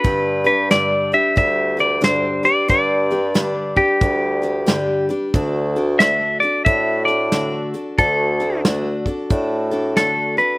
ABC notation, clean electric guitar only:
X:1
M:4/4
L:1/8
Q:"Swing" 1/4=91
K:G
V:1 name="Clean electric guitar"
B B d e e d c d | d3 G4 z | z2 e d e d2 z | A2 z4 A B |]